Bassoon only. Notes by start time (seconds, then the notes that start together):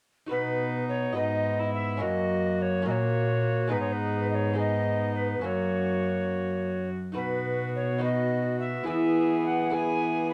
0.32 B3
1.17 B3
2.01 A#3
2.86 A#3
3.71 B3
4.58 B3
5.43 A#3
7.17 B3
8.02 B3
8.88 B3
9.73 B3